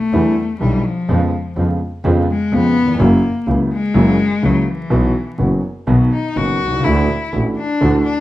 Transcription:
Already playing: cello A3
0.13 double bass E2, grand piano E2 D3 E3 G3 B3 E4
0.61 grand piano B1 B2 D3 G3 B3 E4, double bass B1, cello G3
0.85 cello F3
1.08 grand piano F2 C#3 F3 G#3 B3 F4, double bass F2
1.56 double bass F2, grand piano F2 C#3 F3 G#3 B3 F4
2.04 double bass F2, grand piano F2 C#3 F3 G#3 B3 F4
2.31 cello G#3
2.52 grand piano F2 C#3 F3 G#3 B3 F4, double bass F2, cello B3
2.83 grand piano D#2
2.87 grand piano E2
2.94 grand piano F2
2.99 double bass F#1, grand piano F#2 C#3 F#3 A#3 E4, cello A#3
3.47 double bass C#2, grand piano C#2 C#3 F#3 A#3 E4
3.73 cello G#3
3.94 double bass F#1, grand piano F#2 C#3 F#3 A#3 E4
4.42 grand piano C#2 C#3 F#3 A#3 E4, double bass C#2, cello F#3
4.61 cello F#3
4.70 cello E3
4.90 grand piano B1 B2 E3 F#3 B3 F#4, double bass B1
5.38 grand piano F#1 F#2 E3 F#3 B3 F#4, double bass F#1
5.87 grand piano B1 B2 D#3 F#3 B3 F#4, double bass B1
6.12 cello D#4
6.36 grand piano F#1 F#2 D#3 F#3 B3 F#4, double bass F#1, cello F#4
6.61 double bass C2
6.67 grand piano B1
6.73 grand piano C2
6.80 grand piano C#2
6.84 grand piano D2 D3 E3 A3 D4 F#4, double bass D2, cello E4
7.32 grand piano A1 A2 E3 A3 D4 F#4, double bass A1
7.57 cello D4
7.81 grand piano D2 D3 E3 A3 D4 F#4, double bass D2
8.04 cello D4

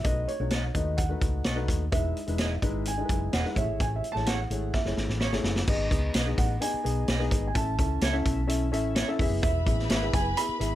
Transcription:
0.04 fingered electric bass B1, upright piano A3 D#4 F#4 B4, grand piano D#5, kick, closed hi-hat
0.28 grand piano C#5, closed hi-hat
0.40 fingered electric bass B1, upright piano A3 D#4 F#4 C#5
0.50 clean electric guitar F#4 A4 D#5, snare, closed hi-hat
0.74 fingered electric bass D#2, upright piano A3 D#4 F#4 B4, grand piano D#5, kick, closed hi-hat
0.97 grand piano F#5, kick, closed hi-hat
1.09 upright piano A3 D#4 F#4 B4
1.21 fingered electric bass C#2, kick, closed hi-hat
1.44 fingered electric bass B1, clean electric guitar F#4 A4 D#5, snare, closed hi-hat
1.55 upright piano A3 D#4 F#4 B4
1.68 fingered electric bass D#2, kick, closed hi-hat
1.92 fingered electric bass E1, upright piano G#3 D#4 E4 B4, grand piano E5, kick, closed hi-hat
2.17 closed hi-hat
2.27 fingered electric bass E1, upright piano G#3 D#4 E4 B4, closed hi-hat
2.38 clean electric guitar G#4 B4 D#5, snare, closed hi-hat
2.62 fingered electric bass G#1, upright piano G#3 D#4 E4 B4, kick, closed hi-hat
2.85 grand piano G#5, closed hi-hat
2.98 upright piano G#3 D#4 E4 A4
3.05 upright piano B4
3.09 fingered electric bass F#1, kick, closed hi-hat
3.33 fingered electric bass E1, clean electric guitar G#4 B4 D#5, grand piano F#5, snare, closed hi-hat
3.44 upright piano G#3 D#4 E4 B4, snare
3.55 fingered electric bass A1, upright piano A3 E4 G#4 C#5, grand piano E5, kick, closed hi-hat
3.67 fingered electric bass G#1
3.80 fingered electric bass A1, grand piano G#5, kick, closed hi-hat
3.96 grand piano E5
4.04 closed hi-hat
4.12 fingered electric bass A1, upright piano A3 E4 G#4, grand piano A5, snare
4.17 upright piano C#5
4.26 clean electric guitar E4 G#4 C#5, grand piano F#5, snare, closed hi-hat
4.50 fingered electric bass G#1, upright piano A3 E4 G#4 C#5, closed hi-hat
4.73 grand piano E5, kick, snare
4.85 fingered electric bass F#1, upright piano A3 E4 G#4 C#5, snare
4.97 fingered electric bass G#1, snare
5.08 fingered electric bass A1, snare
5.20 clean electric guitar E4 G#4 C#5, snare
5.32 fingered electric bass G#1, upright piano A3 E4 G#4 C#5, snare
5.43 fingered electric bass F#1, snare
5.56 snare
5.68 fingered electric bass G#1, upright piano B3 D#4 G#4 D#5, grand piano D#5, kick, crash
5.90 fingered electric bass C#2, upright piano B3 D#4 G#4 D#5, kick, closed hi-hat
6.14 fingered electric bass B1, clean electric guitar G#4 B4 D#5, snare, closed hi-hat
6.26 upright piano B3 D#4 G#4 D#5
6.38 fingered electric bass A1, grand piano F#5, kick, closed hi-hat
6.60 upright piano B3 D#4 G#4 D#5, grand piano G#5, closed hi-hat
6.74 muted fingered electric bass stroke
6.84 fingered electric bass B1, upright piano B3 D#4 G#4 D#5, closed hi-hat
7.08 fingered electric bass B1, clean electric guitar G#4 B4 D#5, snare, closed hi-hat
7.19 upright piano B3 D#4 G#4 D#5, snare
7.31 fingered electric bass G#1, kick, closed hi-hat
7.47 grand piano G#5
7.55 fingered electric bass A1, upright piano C#4 E4 A4 E5, grand piano A5, kick, closed hi-hat
7.78 fingered electric bass C#2, upright piano C#4 E4 A4 E5, kick, closed hi-hat
8.01 fingered electric bass C#2, clean electric guitar A4 C#5 E5, snare, closed hi-hat
8.12 upright piano C#4 E4 A4 E5
8.25 fingered electric bass B1, kick, closed hi-hat
8.47 upright piano C#4 E4 A4 E5, closed hi-hat
8.72 fingered electric bass A1, upright piano C#4 E4 A4 E5, closed hi-hat
8.95 clean electric guitar A4 C#5 E5, snare, closed hi-hat
9.08 upright piano C#4 E4 A4 E5
9.19 fingered electric bass E1, upright piano B3 E4 G#4 E5, kick, open hi-hat
9.30 fingered electric bass F#1
9.43 fingered electric bass E1, string section B4 B5, grand piano E5, kick, closed hi-hat
9.66 fingered electric bass A1, upright piano B3 E4 G#4 E5, kick, closed hi-hat
9.79 snare
9.89 fingered electric bass G#1, clean electric guitar G#4 B4 E5, snare, closed hi-hat
10.02 upright piano B3 E4 G#4 E5
10.13 fingered electric bass F#1, grand piano G#5, kick, closed hi-hat
10.37 upright piano B3 E4 G#4 E5, grand piano B5, closed hi-hat
10.49 muted fingered electric bass stroke
10.59 fingered electric bass G#1, upright piano B3 E4 G#4 E5, closed hi-hat

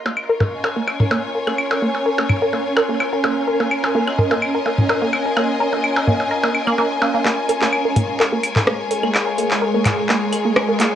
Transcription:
Already playing: synth drone C#4 C#5, string section F4
0.06 synth arpeggio sound A#3, percussion blips
0.10 string section A#4
0.17 claves
0.29 synth arpeggio sound A#4, string section C#5
0.40 synth arpeggio sound A#3, mid tom, percussion blips
0.53 string section G#5
0.64 synth arpeggio sound A#4, percussion blips
0.77 synth arpeggio sound A#3
0.88 claves, percussion blips
1.00 synth arpeggio sound A#4, mid tom
1.11 synth arpeggio sound A#3, percussion blips
1.35 synth arpeggio sound A#4
1.47 synth arpeggio sound A#3, claves, percussion blips
1.59 claves
1.71 synth arpeggio sound A#4, percussion blips
1.82 synth arpeggio sound A#3
1.95 percussion blips
2.06 synth arpeggio sound A#4
2.18 synth arpeggio sound A#3, percussion blips
2.29 mid tom, claves
2.42 synth arpeggio sound A#4
2.53 synth arpeggio sound A#3, percussion blips
2.77 synth arpeggio sound A#4, claves, percussion blips
2.89 synth arpeggio sound A#3
3.00 claves, percussion blips
3.13 synth arpeggio sound A#4
3.24 synth arpeggio sound A#3, percussion blips
3.48 synth arpeggio sound A#4
3.60 synth arpeggio sound A#3, percussion blips
3.71 claves
3.84 synth arpeggio sound A#4, percussion blips
3.95 synth arpeggio sound A#3
4.07 string section D#5, claves, percussion blips
4.18 synth arpeggio sound A#4, mid tom
4.31 synth arpeggio sound A#3, percussion blips
4.42 claves
4.55 synth arpeggio sound A#4
4.66 synth arpeggio sound A#3, percussion blips
4.78 mid tom
4.89 synth arpeggio sound A#4, percussion blips
5.02 synth arpeggio sound A#3
5.13 claves, percussion blips
5.25 synth arpeggio sound A#4
5.36 synth arpeggio sound A#3, claves, percussion blips
5.60 synth arpeggio sound A#4
5.73 synth arpeggio sound A#3, percussion blips
5.84 claves
5.96 synth arpeggio sound A#4, percussion blips
6.07 synth arpeggio sound A#3, mid tom
6.20 percussion blips
6.31 synth arpeggio sound A#4
6.43 synth arpeggio sound A#3, percussion blips
6.55 claves
6.67 synth arpeggio sound A#3, claves
6.78 synth arpeggio sound A#3, percussion blips
7.02 synth arpeggio sound A#3, percussion blips
7.14 synth arpeggio sound A#3
7.25 synth drone G#3 G#4, synth arpeggio sound A#3, clap
7.46 synth arpeggio sound A#4, string section C#5, open hi-hat
7.62 synth arpeggio sound A#3, clap
7.73 claves
7.85 synth arpeggio sound A#4
7.96 synth arpeggio sound A#3, mid tom, open hi-hat
8.20 synth arpeggio sound A#4, clap
8.32 synth arpeggio sound A#3
8.44 open hi-hat, claves
8.56 synth arpeggio sound A#4, clap, mid tom
8.67 synth arpeggio sound A#3, cross-stick
8.91 synth arpeggio sound A#4, open hi-hat
9.03 synth arpeggio sound A#3, claves
9.14 clap, claves
9.27 synth arpeggio sound A#4
9.38 synth arpeggio sound A#3, open hi-hat
9.51 clap
9.62 synth arpeggio sound A#4
9.74 synth arpeggio sound A#3
9.85 clap, mid tom, open hi-hat, claves
9.98 synth arpeggio sound A#4
10.09 synth arpeggio sound A#3, clap
10.33 synth arpeggio sound A#4, open hi-hat, claves
10.45 synth arpeggio sound A#3
10.56 cross-stick, claves
10.69 synth arpeggio sound A#4
10.80 synth arpeggio sound A#3, clap, open hi-hat

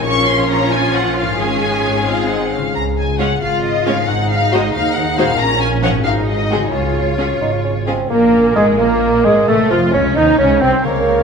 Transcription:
Already playing: harp A#2 C#4 F4
0.02 violin section F4 C#5 C#6, harp C#5
0.07 double bass section A#1, viola section F3 C#4, cello section C#4
0.27 violin section C6
0.51 violin section A#5
0.72 cello section F4, violin section G#5
0.96 violin section F#5
1.17 violin section F5
1.21 harp G#2
1.26 harp C#4
1.31 harp F4
1.35 violin section F4 C#5, cello section G#4, harp C#5
1.39 double bass section G#1, viola section G#3 C#4, violin section G#5
1.89 harp G#2
1.93 harp D#4
1.98 harp G#4
2.02 violin section F4, harp C5
2.06 viola section G#3 C4, violin section F5
2.28 violin section D#4 F#5
2.51 violin section C#4 F5
2.57 harp C#3
2.61 harp F4
2.66 harp G#4
2.70 harp C#5
2.75 double bass section C#2, violin section A#5
2.98 violin section G#5
3.19 viola section G#3 C#4, violin section F4 C#5 F#5
3.42 double bass section G#1, cello section F4, violin section F5
3.64 violin section D#5
3.86 viola section G#3 C#4, violin section F4 C#5 F5
3.91 harp G#2
3.95 harp D#4
4.00 harp G#4
4.04 harp C5, violin section F#5
4.09 double bass section G#1, cello section D#4
4.30 violin section F5
4.52 viola section G#3 D#4, violin section F#4 C5 D#5
4.75 double bass section D#2, violin section F5
4.96 violin section F#5
5.17 viola section G#3 D#4, violin section F#4 C5 F5
5.22 harp A#2
5.26 harp C#4
5.31 harp F4
5.35 harp C#5
5.39 double bass section A#1, cello section C#4, violin section A#5
5.61 violin section G#5
5.83 viola section F3 C#4, violin section F4 C#5 F#5
5.88 harp G#2
5.93 harp C4
5.97 harp F#4
6.01 harp G#4, violin section F5
6.06 double bass section G#1, cello section D#4
6.27 violin section D#5
6.50 viola section G#3 C4, violin section F#4 G#4
6.55 harp C#3
6.60 harp C#4
6.64 harp F4
6.69 harp G#4
6.73 double bass section C#2, cello section F4, violin section C#5
7.18 viola section G#3 C#4, bassoon C#4, violin section F4 G#4
7.41 double bass section G#1, bassoon D#4
7.64 bassoon C#4
7.86 viola section G#3 C#4, bassoon C4, violin section F4 G#4
8.10 double bass section A#1, harp A#2, cello section A#2, violin section A#3, oboe A#3, viola section A#3, bassoon A#3, french horn section A#3, clarinet A#3, flute A#4
8.34 harp C#4
8.55 double bass section G#1, cello section G#2, clarinet G#3, viola section G#3, bassoon G#3, violin section G#3, french horn section G#3, oboe G#4, flute G#4, harp A#4
8.78 double bass section A#1, cello section A#2, bassoon A#3, french horn section A#3, oboe A#3, violin section A#3, viola section A#3, clarinet A#3, flute A#4
9.02 harp F5
9.24 double bass section G#1, cello section G#2, bassoon G#3, french horn section G#3, clarinet G#3, viola section G#3, violin section G#3, oboe G#4, flute G#4, harp C#5
9.47 double bass section A1, cello section A2, harp C3, french horn section A3, bassoon A3, clarinet A3, violin section A3, viola section A3, oboe A4, flute A4
9.70 double bass section F1, cello section F2, french horn section F3, bassoon F3, viola section F3, clarinet F3, harp C4, violin section F4, oboe F4, flute F4
9.93 double bass section C#2, cello section C#3, french horn section C#4, violin section C#4, oboe C#4, bassoon C#4, viola section C#4, clarinet C#4, flute C#4, harp D#5
10.16 double bass section D#2, cello section D#3, bassoon D#4, oboe D#4, flute D#4, viola section D#4, violin section D#4, french horn section D#4, clarinet D#4, harp C5
10.38 double bass section C#2, cello section C#3, bassoon C#4, violin section C#4, oboe C#4, clarinet C#4, french horn section C#4, flute C#4, viola section C#4, harp F5
10.61 double bass section C2, cello section C3, violin section C4, bassoon C4, oboe C4, viola section C4, flute C4, clarinet C4, french horn section C4, harp C5
10.84 double bass section C#2, harp C#3, cello section C#3, bassoon A#3, clarinet A#4, viola section A#4, violin section C#5 F5, french horn section C#5 F5, oboe C#5, flute F5
11.07 harp A#3

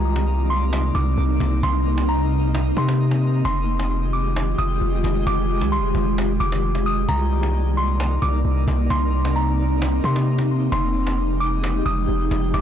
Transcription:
Already playing: 808-style bass C2, ambient pad C3 A#3 C4 D#4, synth texture A#3 D#4 D5, synth bell A#5
0.04 cajon slap
0.16 cajon slap
0.27 cajon slap
0.50 synth bell C6
0.73 cajon slap
0.95 808-style bass C2, synth bell D6, cajon bass
1.18 808-style bass C2, cajon slap
1.40 808-style bass C2, cajon bass, cajon slap
1.63 808-style bass C2, synth texture D#5, synth bell C6, cajon bass
1.86 cajon slap
1.98 cajon slap
2.09 synth bell A#5, cajon slap
2.55 cajon slap
2.77 808-style bass C3, synth bell C6, cajon bass
2.89 cajon slap
3.00 cajon slap
3.11 cajon slap
3.22 cajon slap
3.45 808-style bass F1, ambient pad D#3 G#3 F4 G4, synth texture G#3 G4, synth bell C6, cajon bass
3.68 cajon slap
3.79 cajon slap
3.91 cajon slap
4.13 synth bell D6
4.36 cajon slap
4.58 808-style bass F1, synth bell D#6, cajon bass
4.81 808-style bass F1, cajon slap
5.04 808-style bass F1, cajon bass, cajon slap
5.27 808-style bass F1, synth bell D6, cajon bass
5.50 cajon slap
5.61 808-style bass C2, cajon slap
5.72 synth bell C6, cajon slap
5.78 808-style bass F1
5.95 808-style bass F1, cajon bass
6.18 cajon slap
6.40 808-style bass F1, synth bell D6, cajon bass
6.52 cajon slap
6.63 cajon slap
6.75 cajon slap
6.86 synth bell D#6, cajon slap
7.09 808-style bass C2, ambient pad C3 A#3 D#4 D5, synth texture A#3 D#4 D5, synth bell A#5, cajon bass
7.31 cajon slap
7.43 cajon slap
7.54 cajon slap
7.77 synth bell C6
8.00 cajon slap
8.22 808-style bass C2, synth bell D6, cajon bass
8.45 808-style bass C2, cajon slap
8.68 808-style bass C2, cajon bass, cajon slap
8.90 808-style bass C2, ambient pad C4, synth bell C6, cajon bass
9.13 cajon slap
9.25 cajon slap
9.36 synth bell A#5, cajon slap
9.82 cajon slap
10.04 808-style bass C3, synth bell C6, cajon bass
10.16 cajon slap
10.27 cajon slap
10.39 cajon slap
10.50 cajon slap
10.72 808-style bass F1, ambient pad F3 G#3 G4, synth texture G#3 G4 D#5, synth bell C6, cajon bass
10.95 cajon slap
11.07 cajon slap
11.18 cajon slap
11.40 synth bell D6
11.64 cajon slap
11.86 808-style bass F1, synth bell D#6, cajon bass
12.09 808-style bass F1, cajon slap
12.31 808-style bass F1, cajon bass, cajon slap
12.54 808-style bass F1, synth bell D6, cajon bass

